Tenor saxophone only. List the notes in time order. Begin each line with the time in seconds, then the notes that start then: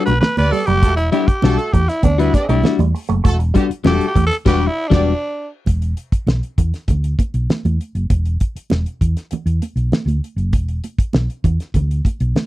0.06 B4
0.21 B4
0.38 B4
0.52 A4
0.66 G4
0.96 E4
1.12 E4
1.27 G4
1.58 A4
1.73 G4
1.89 E4
2.04 D4
2.20 E4
2.35 D4
2.49 E4
3.87 G4
4.07 G4
4.27 A4
4.47 G4
4.68 E4
4.88 D4